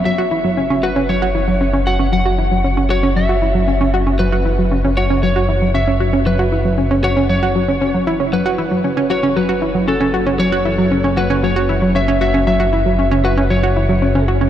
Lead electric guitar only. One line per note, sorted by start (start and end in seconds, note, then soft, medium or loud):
0.05 0.85 E5 loud
0.83 1.10 B4 medium
1.09 1.89 C#5 medium
1.87 2.12 F#5 loud
2.13 2.93 F#5 loud
2.90 3.16 C#5 medium
3.16 3.90 E5 medium
4.19 4.93 B4 medium
4.97 5.21 C#5 medium
5.23 5.71 C#5 loud
5.75 6.11 E5 loud
6.27 6.75 B4 medium
7.04 7.28 C#5 loud
7.29 8.03 C#5 loud
8.33 9.13 B4 medium
9.11 9.38 C#5 medium
9.37 9.88 B4 medium
9.88 10.24 A4 medium
10.40 11.20 C#5 loud
11.18 11.44 B4 loud
11.44 11.92 C#5 loud
11.96 12.20 E5 loud
12.22 12.46 E5 loud
12.47 13.27 E5 loud
13.25 13.51 B4 loud
13.50 14.24 C#5 medium